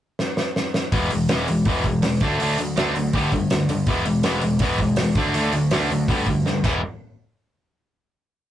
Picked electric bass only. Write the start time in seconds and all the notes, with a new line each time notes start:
0.92 E1
1.12 E1
1.30 E1
1.49 E1
1.66 E1
2.04 E1
2.21 D2
2.41 D2
2.59 D2
2.78 D2
2.97 D2
3.13 D2
3.52 D2
3.70 D2
3.87 E1
4.06 E1
4.24 E1
4.42 E1
4.60 E1
4.98 E1
5.16 D2
5.34 D2
5.53 D2
5.72 D2
5.91 D2
6.08 D2
6.45 D2
6.64 E1